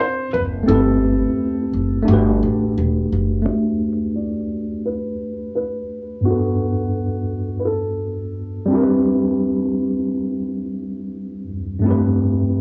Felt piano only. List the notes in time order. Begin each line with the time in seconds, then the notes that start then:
0.00 C5
0.33 B4
0.68 A4
3.46 E5
4.16 D5
4.86 B4
5.55 B4
6.25 F#4
7.59 B4
7.65 A4